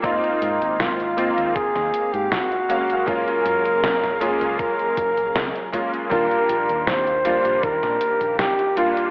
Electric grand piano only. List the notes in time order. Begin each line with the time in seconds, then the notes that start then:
0.02 A#3 C4 D#4 F4
1.17 A#3 C4 D#4 F4
2.69 G#3 A#3 C#4 F5
3.06 G#3 A#3 C#4 F4
4.20 G#3 A#3 C#4 F4
5.72 G#3 A#3 C#4 F4
6.10 G3 A#3 D4 F4
7.25 G3 A#3 D4 F4
8.76 G3 A#3 D4 F4